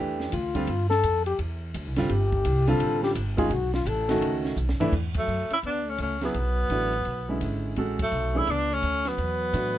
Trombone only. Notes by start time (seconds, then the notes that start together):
0.33 F4
0.90 A4
1.26 G4
2.10 G4
2.69 A4
3.04 G4
3.38 F4
3.53 F#4
3.74 F4
3.88 A4
5.18 F#3
5.51 C#4
5.65 B3
5.86 A3
5.99 A3
6.21 F#3
8.01 F#3
8.37 C#4
8.50 B3
8.73 A3
9.07 F#3